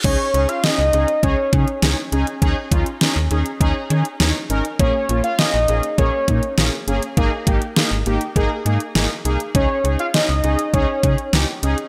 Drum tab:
CC |x---------------|----------------|----------------|----------------|
HH |x-xxx-xxx-xxx-xx|x-xxx-xxx-xxx-xx|x-xxx-xxx-xxx-xx|x-xxx-xxx-xxx-xx|
SD |----o-------o---|----o-------o---|----o-------o---|----o-------o---|
BD |o-------o-o-----|o-o-----o-------|o-------o-o-----|o-o-----o-------|

CC |----------------|
HH |x-xxx-xxx-xxx-xx|
SD |----o-------o---|
BD |o-------o-o-----|